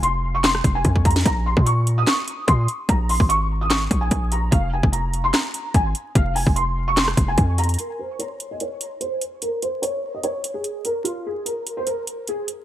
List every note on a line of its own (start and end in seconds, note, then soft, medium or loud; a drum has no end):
0.00 0.61 F1 loud
0.00 0.32 C6 medium
0.00 closed hi-hat medium
0.35 0.43 C#6 medium
0.44 0.73 C6 medium
0.44 snare loud
0.44 clap medium
0.44 closed hi-hat medium
0.55 cross-stick loud
0.64 0.84 F1 loud
0.64 kick loud
0.64 closed hi-hat medium
0.75 1.03 G#5 medium
0.85 1.24 F2 loud
0.85 kick medium
0.85 closed hi-hat medium
0.96 kick medium
1.05 1.23 A#5 loud
1.05 kick loud
1.05 closed hi-hat medium
1.11 closed hi-hat medium
1.16 snare loud
1.16 closed hi-hat medium
1.21 closed hi-hat soft
1.26 1.56 A#1 loud
1.26 1.44 A#5 medium
1.26 kick loud
1.26 closed hi-hat medium
1.46 1.64 C6 medium
1.57 2.05 A#2 loud
1.57 kick loud
1.66 1.96 C#6 medium
1.66 closed hi-hat medium
1.87 closed hi-hat medium
1.98 2.06 D#6 medium
2.07 2.46 C#6 medium
2.07 snare loud
2.07 clap loud
2.07 closed hi-hat medium
2.28 closed hi-hat medium
2.47 2.68 A#2 loud
2.47 2.65 C6 medium
2.47 kick loud
2.47 closed hi-hat medium
2.68 closed hi-hat medium
2.89 3.19 A#1 loud
2.89 3.07 A#5 medium
2.89 kick loud
2.89 closed hi-hat medium
3.09 3.27 C6 medium
3.09 open hi-hat medium
3.20 3.88 G#1 loud
3.20 kick loud
3.29 3.59 C#6 medium
3.29 closed hi-hat medium
3.61 3.69 D#6 medium
3.70 4.00 C#6 loud
3.70 snare loud
3.70 clap medium
3.70 closed hi-hat medium
3.91 4.10 A#1 loud
3.91 kick loud
3.91 closed hi-hat medium
4.01 4.30 G#5 medium
4.11 4.50 A#1 loud
4.11 kick loud
4.11 closed hi-hat medium
4.32 4.49 A#5 medium
4.32 closed hi-hat medium
4.51 4.82 F1 loud
4.51 4.69 F5 medium
4.51 kick loud
4.51 closed hi-hat medium
4.73 4.91 G#5 medium
4.83 5.32 F1 loud
4.83 kick loud
4.92 5.22 A#5 medium
4.92 closed hi-hat medium
5.13 closed hi-hat medium
5.24 5.32 C6 medium
5.34 5.72 A#5 medium
5.34 snare loud
5.34 clap medium
5.34 closed hi-hat medium
5.54 closed hi-hat medium
5.74 5.94 G#1 loud
5.74 5.93 G#5 medium
5.74 kick loud
5.74 closed hi-hat medium
5.95 closed hi-hat medium
6.15 6.45 F1 loud
6.15 6.33 F5 medium
6.15 kick loud
6.15 closed hi-hat medium
6.35 6.53 G#5 medium
6.35 open hi-hat medium
6.47 7.15 F1 loud
6.47 kick loud
6.56 6.85 C6 medium
6.56 closed hi-hat medium
6.88 6.96 C#6 medium
6.97 7.26 C6 loud
6.97 snare loud
6.97 clap medium
6.97 closed hi-hat medium
7.08 cross-stick loud
7.17 7.37 F1 loud
7.17 kick loud
7.17 closed hi-hat medium
7.28 7.56 G#5 medium
7.38 7.77 F2 loud
7.38 kick loud
7.38 closed hi-hat medium
7.58 7.76 A#5 medium
7.58 closed hi-hat medium
7.64 closed hi-hat medium
7.69 closed hi-hat medium
7.74 closed hi-hat soft
7.79 7.97 A#4 medium
7.79 closed hi-hat medium
7.99 8.17 C5 medium
8.19 8.49 C#5 medium
8.19 closed hi-hat medium
8.40 closed hi-hat medium
8.51 8.59 D#5 medium
8.60 8.99 C#5 medium
8.60 closed hi-hat medium
8.81 closed hi-hat medium
9.01 9.18 C5 medium
9.01 closed hi-hat medium
9.21 closed hi-hat medium
9.42 9.60 A#4 medium
9.42 closed hi-hat medium
9.62 9.80 C5 medium
9.62 closed hi-hat medium
9.82 10.12 C#5 medium
9.82 closed hi-hat medium
10.14 10.22 D#5 medium
10.23 10.53 C#5 medium
10.23 closed hi-hat medium
10.44 closed hi-hat medium
10.54 10.83 G#4 medium
10.64 closed hi-hat medium
10.85 11.02 A#4 medium
10.85 closed hi-hat medium
11.04 11.22 F4 medium
11.04 closed hi-hat medium
11.26 11.44 G#4 medium
11.45 11.75 A#4 medium
11.45 closed hi-hat medium
11.67 closed hi-hat medium
11.77 11.85 C5 medium
11.87 12.25 A#4 medium
11.87 closed hi-hat medium
12.07 closed hi-hat medium
12.27 12.46 G#4 medium
12.27 closed hi-hat medium
12.48 closed hi-hat medium